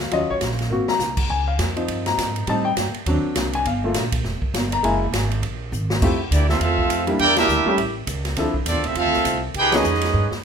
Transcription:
Already playing: D2
0.11 D#2 F#3 C#4 F4 D#5, kick, ride
0.21 C#2
0.30 A#1 C#5
0.41 A#1, kick, snare, hi-hat pedal, ride
0.51 snare
0.59 snare, ride
0.69 G#1 A#3 C4 F#4
0.87 A#5, muted upright bass stroke, snare
0.99 C2, snare, hi-hat pedal
1.17 kick, crash
1.29 C#2 G#5, kick
1.48 F5
1.59 F2, kick, snare, hi-hat pedal, ride
1.76 F3 C4 D#4, ride
1.88 G2, kick, ride
2.06 A#5, snare, ride
2.18 G#2, kick, snare, hi-hat pedal, ride
2.36 ride
2.47 A2 G3 C4 D#4 A5, kick, ride
2.65 G5
2.77 G2, kick, snare, hi-hat pedal, ride
2.93 muted upright bass stroke, ride
3.06 D#2 F#3 C4 D4, kick, ride
3.23 muted upright bass stroke
3.35 C2, kick, snare, hi-hat pedal, ride
3.53 G#5, ride
3.65 G1 F5, kick, ride
3.84 A3 A#3 F4
3.94 A#1, kick, snare, hi-hat pedal, ride
4.12 kick, ride
4.24 F1, kick, snare
4.42 muted upright bass stroke, kick
4.54 G1, kick, snare, hi-hat pedal, ride
4.72 A#5, ride
4.83 F#1 G#3 A#3 E4 G#5, kick, ride
5.12 G#1, kick, snare, hi-hat pedal, ride
5.31 ride
5.42 A#1, kick, ride
5.72 G#1, hi-hat pedal
5.90 snare
6.02 F2 A3 C4 E4 F4 G4, kick, crash
6.31 D2 A#3 D4 E4 G4 D5, kick, hi-hat pedal, ride
6.49 A3 C4 E4 F4 A4 E5, snare
6.60 E2 A3 C4 F4 A4 E5 F5, kick, ride
6.78 kick
6.89 F2, hi-hat pedal, ride
7.07 G3 A#3 D4 E4 G4, ride
7.19 E2 A#3 D4 E4 G4 A#4 D5 G5, kick, ride
7.36 G3 A#3 D4 E4 G4 A#4 E5, snare, ride
7.48 D2, hi-hat pedal
7.66 G3 A3 C#4 E4 G4, muted upright bass stroke
7.77 A1, kick, ride
8.07 C#2, kick, hi-hat pedal, ride
8.25 snare, ride
8.36 D2 F3 C4 D4 E4 A4, kick, snare, ride
8.54 muted upright bass stroke, kick
8.66 E2 F3 A3 C4 D4 F4 A4 D5, kick, hi-hat pedal, ride
8.75 D2
8.84 C2 A3 C4 E4 F4 A4 E5, ride
8.95 F2 A3 C4 F4 A4 E5 F5, kick, ride
9.05 D2
9.13 C2, snare
9.25 C2, kick, hi-hat pedal, ride
9.54 C#2 D#4 G4 G#4 G5, kick, ride
9.58 B4
9.72 F3 G#3 B3 C#4 D#4 G#4 B4, snare, ride
9.76 D#5
9.84 F2, hi-hat pedal
9.94 snare
10.01 snare, ride
10.14 G2, kick
10.31 muted upright bass stroke, snare

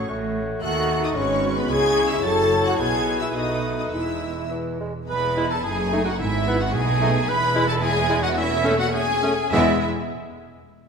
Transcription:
Already playing: F#3 G#4 A4
0.09 A1 A2 A3 F#4 C#5
0.62 D#2 D#3 A3 F#4 A4 F#5 F#6
1.02 D#4 D#5 D#6
1.16 G#1 G#2 G#3 C#4 B4 C#5 C#6
1.56 B3 B4 B5
1.69 C#2 C#3 E4 G#4 C#5 G#5 G#6
2.10 E4 E5 E6
2.23 F#1 F#2 F#3 A4 A5 A6
2.65 F#4 F#5 F#6
2.78 B1 B2 G#3 G#4 B4 G#5 G#6
3.19 E4 E5 E6
3.34 B1 B2 A3 D#4 F#4 D#5 D#6
3.77 D#4 D#5 D#6
3.92 E1 E2 G#3 E4 E5 E6
4.51 E3
4.80 G#3
5.08 E1 E2 B3 G#4 B4 B5
5.37 G#3 E4
5.50 A4 A5
5.64 F#1 F#2 A3 D#4 G#4 G#5
5.92 A3 D#4
6.05 F#4 F#5
6.20 G#1 G#2 B3 E4 E5
6.48 B3 E4
6.61 F#4 F#5
6.74 B1 B2 A3 D#4 G#4 G#5
7.01 A3 D#4
7.27 E1 E2 G#3 E4 B4 B5
7.55 G#3 E4
7.68 A4 A5
7.82 G#4 G#5
8.09 G#3 E4
8.23 F#4 F#5
8.37 A3 C#4 E4 E5
8.64 A3 C#4
8.79 F#4 F#5
8.93 G#4 G#5
9.23 A3 C#4
9.52 E1 E2 G#3 B3 E4 E5

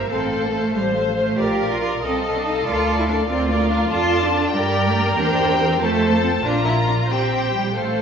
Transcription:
0.10 A1 C4 A4 C5 F5
0.31 A4 C5 F5
0.43 A#3
0.52 A3 A4 C5 F5
0.74 A1 G3 A4 C5 F5
0.95 F3 A4 C5 F5
1.17 A3 A4 C5 F5
1.38 A#1 F4 G4 A#4 D5 F5
1.60 F4 D5 F5
1.70 F4
1.81 F4 D5 F5
2.02 C2 C4 A4 D#5 F5
2.23 A4 D#5 F5
2.35 D4
2.45 D#4 A4 D#5 F5
2.65 D2 F4 A#4 D5 F5
2.87 A#4 D5 F5
2.99 E4
3.08 D4 A#4 D5 F5
3.28 D2 C4 F4 A#4 D5 F5
3.50 A#3 A#4 D5 F5
3.71 D4 A#4 D5 F5
3.91 F2 F4 A4 D5 A5
4.23 D4
4.34 D4
4.54 G2 G3 A#4 D5 G5
4.87 A3
4.97 A#3
5.18 E2 D4 G4 C5 G5
5.50 C4
5.60 C4
5.81 F2 A3 F4 A4 C5 A5
6.13 A#3
6.23 C4
6.44 A#1 D4 F4 A#4 A#5
6.65 E4
6.86 D4
7.09 A#1 C4 G4 C5 G5
7.53 G3
7.76 A1 A3 A4 C5 F5

